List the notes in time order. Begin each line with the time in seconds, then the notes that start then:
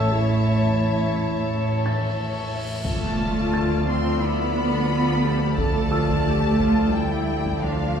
Already playing: A1 E2 A2 A4 C#5 E5 A5 G6
0.12 E4, cymbal swell
1.86 A6
2.84 D2 F3 A3 F4 A4 D5 A5 D6 E6 F6, taiko, impact
3.54 A6
3.87 C4 C6
4.21 B3 E4 B5
4.55 D4
4.89 F4
5.24 G4
5.57 A3 A4 A5, taiko
5.92 F4 E6
6.09 taiko
6.25 G4
6.60 F4, taiko
6.93 G3 E4 G5
7.45 taiko
7.61 F3 D4 F5
7.95 C4